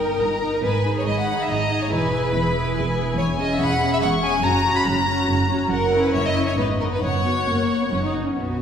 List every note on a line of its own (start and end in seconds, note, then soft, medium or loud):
0.00 0.13 G1 soft
0.00 0.14 G2 soft
0.00 0.41 D#4 soft
0.00 0.41 A#4 soft
0.00 0.61 A#4 medium
0.00 0.19 G5 soft
0.20 0.56 G1 medium
0.20 0.56 G2 soft
0.20 0.63 A#5 soft
0.42 0.63 D#4 soft
0.42 0.63 A#4 soft
0.63 0.99 G#1 soft
0.63 0.99 G#2 soft
0.63 0.95 B4 medium
0.63 1.05 G#5 soft
0.85 1.26 D#4 soft
0.85 1.26 G#4 soft
0.98 1.07 C#5 soft
1.06 1.42 G#1 soft
1.06 1.42 G#2 soft
1.06 1.17 D#5 medium
1.06 1.48 B5 soft
1.19 1.39 F#5 medium
1.27 1.69 D#4 soft
1.27 1.69 G#4 soft
1.41 1.50 E5 soft
1.48 1.84 G#1 soft
1.48 1.84 G#2 soft
1.48 1.82 D#5 medium
1.48 1.90 A#5 soft
1.70 1.91 D#4 soft
1.70 1.90 G#4 soft
1.83 1.92 C#5 medium
1.91 2.27 E1 soft
1.91 2.27 E2 medium
1.91 2.11 E4 soft
1.91 2.12 G#4 soft
1.91 3.16 B4 medium
1.91 2.33 G#5 soft
2.13 2.54 E4 soft
2.13 2.54 G#4 soft
2.33 2.69 E1 soft
2.33 2.69 E2 soft
2.33 2.75 B5 soft
2.55 2.96 E4 soft
2.55 2.96 G#4 soft
2.75 3.11 E1 medium
2.75 3.11 E2 medium
2.75 3.15 G#5 soft
2.97 3.18 E4 soft
2.97 3.17 G#4 soft
3.16 3.53 E1 medium
3.16 3.53 E2 medium
3.16 3.26 C#5 medium
3.16 3.58 G#5 medium
3.39 3.80 C#4 soft
3.39 3.79 G#4 soft
3.39 3.49 D#5 medium
3.52 3.61 E5 medium
3.60 3.95 E1 medium
3.60 3.95 E2 medium
3.60 3.91 F#5 medium
3.60 4.01 B5 medium
3.80 4.21 C#4 soft
3.80 4.21 G#4 soft
3.93 3.96 E5 medium
4.01 4.37 E1 medium
4.01 4.37 E2 medium
4.01 4.10 F#5 medium
4.01 4.43 C#6 medium
4.22 4.43 C#4 soft
4.22 4.43 G#4 soft
4.22 4.43 G#5 medium
4.43 4.79 F#1 medium
4.43 4.79 F#2 medium
4.43 4.64 C#4 soft
4.43 4.63 F#4 soft
4.43 4.75 A#5 medium
4.43 5.68 A#5 medium
4.65 5.06 C#4 soft
4.65 5.06 F#4 soft
4.76 4.86 B5 medium
4.85 5.21 F#1 medium
4.85 5.21 F#2 medium
4.85 5.50 A#5 medium
5.07 5.48 C#4 soft
5.07 5.48 F#4 soft
5.27 5.63 F#1 medium
5.27 5.63 F#2 medium
5.49 5.70 C#4 soft
5.49 5.70 F#4 soft
5.70 6.06 F#1 medium
5.70 6.06 F#2 medium
5.70 6.01 A#4 medium
5.70 6.12 F#5 medium
5.92 6.34 C#4 soft
5.92 6.34 E4 soft
6.04 6.14 B4 medium
6.13 6.49 F#1 medium
6.13 6.49 F#2 medium
6.13 6.23 C#5 medium
6.13 6.57 E5 soft
6.26 6.47 D#5 medium
6.35 6.56 C#4 soft
6.35 6.56 E4 soft
6.46 6.57 C#5 medium
6.56 6.94 G#1 medium
6.56 6.94 G#2 soft
6.56 6.78 B3 soft
6.56 6.78 D#4 soft
6.56 6.66 B4 medium
6.56 7.00 D#5 soft
6.79 7.01 B3 soft
6.79 7.01 D#4 soft
6.79 6.85 A#4 medium
6.92 7.02 B4 medium
7.01 7.39 F#1 medium
7.01 7.39 F#2 medium
7.01 8.11 C#5 medium
7.01 8.11 F#5 soft
7.24 7.41 B3 soft
7.24 7.41 F#4 soft
7.46 7.83 F#1 soft
7.46 7.84 F#2 soft
7.46 7.77 A#3 soft
7.81 7.91 B3 soft
7.90 8.27 F#1 medium
7.90 8.28 F#2 soft
7.90 8.01 C#4 soft
8.03 8.24 D#4 soft
8.25 8.35 C#4 soft
8.35 8.62 B1 soft
8.35 8.62 B2 soft
8.35 8.62 B3 soft
8.35 8.62 F#4 soft